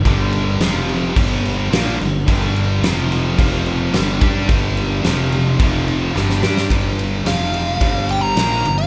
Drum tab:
CC |x-x-x-x-x-x-x-x-|x-x-x-x-x-x-x-x-|x-x-x-x-x-x-----|----------------|
RD |----------------|----------------|----------------|x-x-x-x-x-x-x-x-|
SD |----o-------o---|----o-------o---|----o-------oooo|----o-------o---|
BD |o-------o-------|o-------o-----o-|o-------o-------|o-------o-------|